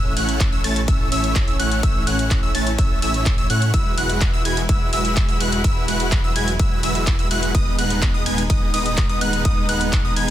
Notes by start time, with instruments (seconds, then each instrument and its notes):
Already playing: detuned saw bass A1, string section E3 A3 C#4, supersaw synth A3 C#4 E4 C#5 E5, digital synth lead E6
0.17 detuned saw bass A1, supersaw synth A3 C#4 E4 C#5 F#5, digital synth lead F#6, open hi-hat, ride
0.29 closed hi-hat
0.40 kick, clap, closed hi-hat, ride
0.52 detuned saw bass A1, supersaw synth A3 C#4 E4 C#5 E5, digital synth lead E6
0.64 detuned saw bass A1, supersaw synth A3 C#4 E4 C#5 A5, digital synth lead A6, open hi-hat, ride
0.76 closed hi-hat
0.88 detuned saw bass A1, supersaw synth A3 C#4 E4 C#5 E5, digital synth lead E6, kick, closed hi-hat, ride
1.12 detuned saw bass A1, supersaw synth A3 C#4 E4 C#5 E5, digital synth lead E6, open hi-hat, ride
1.24 closed hi-hat
1.36 kick, clap, closed hi-hat, ride
1.48 detuned saw bass A1, supersaw synth A3 C#4 E4 C#5 E5, digital synth lead E6, closed hi-hat
1.59 detuned saw bass A1, supersaw synth A3 C#4 E4 C#5 F#5, digital synth lead F#6, open hi-hat, ride
1.72 closed hi-hat
1.83 detuned saw bass A1, supersaw synth A3 C#4 E4 C#5 E5, digital synth lead E6, kick, closed hi-hat, ride
2.07 detuned saw bass A1, supersaw synth A3 C#4 E4 C#5 F#5, digital synth lead F#6, open hi-hat, ride
2.19 closed hi-hat
2.31 kick, clap, closed hi-hat, ride
2.43 detuned saw bass A1, supersaw synth A3 C#4 E4 C#5 E5, digital synth lead E6
2.55 detuned saw bass A1, supersaw synth A3 C#4 E4 C#5 A5, digital synth lead A6, open hi-hat, ride
2.67 closed hi-hat
2.79 detuned saw bass A1, supersaw synth A3 C#4 E4 C#5 E5, digital synth lead E6, kick, closed hi-hat, ride
3.02 detuned saw bass A1, supersaw synth A3 C#4 E4 C#5 E5, digital synth lead E6, open hi-hat, ride
3.14 closed hi-hat
3.26 kick, clap, closed hi-hat, ride
3.38 detuned saw bass A1, supersaw synth A3 C#4 E4 C#5 E5, digital synth lead E6, closed hi-hat
3.50 detuned saw bass A2, supersaw synth A3 C#4 E4 C#5 F#5, digital synth lead F#6, open hi-hat, ride
3.62 closed hi-hat
3.74 detuned saw bass E1, string section F#3 G#3 E4, supersaw synth G#3 E4 F#4 B4 E5, digital synth lead E6, kick, closed hi-hat, ride
3.98 detuned saw bass E1, supersaw synth G#3 E4 F#4 B4 F#5, digital synth lead F#6, open hi-hat, ride
4.10 closed hi-hat
4.21 kick, clap, closed hi-hat, ride
4.33 detuned saw bass E1, supersaw synth G#3 E4 F#4 B4 E5, digital synth lead E6
4.45 detuned saw bass E1, supersaw synth G#3 E4 F#4 B4 G#5, digital synth lead G#6, open hi-hat, ride
4.57 closed hi-hat
4.69 supersaw synth G#3 E4 F#4 B4 E5, digital synth lead E6, kick, closed hi-hat, ride
4.93 detuned saw bass E1, supersaw synth G#3 E4 F#4 B4 E5, digital synth lead E6, open hi-hat, ride
5.05 closed hi-hat
5.17 kick, clap, closed hi-hat, ride
5.29 detuned saw bass E1, supersaw synth G#3 E4 F#4 B4 E5, digital synth lead E6, closed hi-hat
5.40 detuned saw bass E1, supersaw synth G#3 E4 F#4 B4 F#5, digital synth lead F#6, open hi-hat, ride
5.52 closed hi-hat
5.64 detuned saw bass E1, supersaw synth G#3 E4 F#4 B4 E5, digital synth lead E6, kick, closed hi-hat, ride
5.88 detuned saw bass E1, supersaw synth G#3 E4 F#4 B4 F#5, digital synth lead F#6, open hi-hat, ride
6.00 closed hi-hat
6.12 kick, clap, closed hi-hat, ride
6.24 detuned saw bass E1, supersaw synth G#3 E4 F#4 B4 E5, digital synth lead E6
6.36 detuned saw bass E1, supersaw synth G#3 E4 F#4 B4 G#5, digital synth lead G#6, open hi-hat, ride
6.48 closed hi-hat
6.59 detuned saw bass E1, supersaw synth G#3 E4 F#4 B4 E5, digital synth lead E6, kick, closed hi-hat, ride
6.83 detuned saw bass E1, supersaw synth G#3 E4 F#4 B4 E5, digital synth lead E6, open hi-hat, ride
6.95 closed hi-hat
7.07 kick, clap, closed hi-hat, ride
7.19 detuned saw bass E1, supersaw synth G#3 E4 F#4 B4 E5, digital synth lead E6, closed hi-hat
7.31 detuned saw bass E1, supersaw synth G#3 E4 F#4 B4 F#5, digital synth lead F#6, open hi-hat, ride
7.43 closed hi-hat
7.55 detuned saw bass D#1, string section G#3 B3 D#4, supersaw synth G#3 B3 D#4 B4 D#5, digital synth lead D#6, kick, closed hi-hat, ride
7.78 detuned saw bass D#1, supersaw synth G#3 B3 D#4 B4 F#5, digital synth lead F#6, open hi-hat, ride
7.90 closed hi-hat
8.02 kick, clap, closed hi-hat, ride
8.14 detuned saw bass D#1, supersaw synth G#3 B3 D#4 B4 D#5, digital synth lead D#6
8.26 detuned saw bass D#1, supersaw synth G#3 B3 D#4 B4 G#5, digital synth lead G#6, open hi-hat, ride
8.38 closed hi-hat
8.50 detuned saw bass D#1, supersaw synth G#3 B3 D#4 B4 D#5, digital synth lead D#6, kick, closed hi-hat, ride
8.74 detuned saw bass D#1, supersaw synth G#3 B3 D#4 B4 D#5, digital synth lead D#6, open hi-hat, ride
8.86 closed hi-hat
8.97 kick, clap, closed hi-hat, ride
9.09 detuned saw bass D#1, supersaw synth G#3 B3 D#4 B4 D#5, digital synth lead D#6, closed hi-hat
9.21 detuned saw bass D#1, supersaw synth G#3 B3 D#4 B4 F#5, digital synth lead F#6, open hi-hat, ride
9.33 closed hi-hat
9.45 detuned saw bass D#1, supersaw synth G#3 B3 D#4 B4 D#5, digital synth lead D#6, kick, closed hi-hat, ride
9.69 detuned saw bass D#1, supersaw synth G#3 B3 D#4 B4 F#5, digital synth lead F#6, open hi-hat, ride
9.81 closed hi-hat
9.93 kick, clap, closed hi-hat, ride
10.05 detuned saw bass D#1, supersaw synth G#3 B3 D#4 B4 D#5, digital synth lead D#6
10.16 detuned saw bass D#1, supersaw synth G#3 B3 D#4 B4 G#5, digital synth lead G#6, open hi-hat, ride